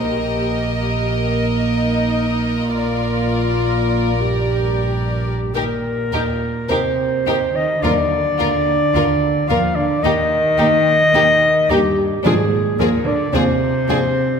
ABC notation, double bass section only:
X:1
M:4/4
L:1/8
Q:1/4=53
K:Eb
V:1 name="Double bass section" clef=bass
B,,,4 B,,,4 | E,, E,, E,, E,, E,, E,, E,, E,, | E,, E,, E,, E,, E,, E,, E,, E,, |]